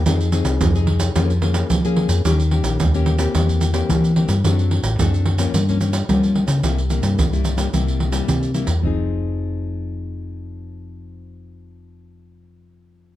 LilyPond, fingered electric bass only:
\new Staff \with { instrumentName = "Fingered electric bass" } { \clef bass \time 4/4 \key f \minor \tempo 4 = 109 f,8. c,16 f,4 f,4 f8. f,16 | ees,8. bes,,16 ees,4 e,4 e8. g,16 | fis,8. a,,16 fis,4 g,4 g8. des16 | c,8. g,16 c,4 c,4 c8. e,16 |
f,,1~ | f,,1 | }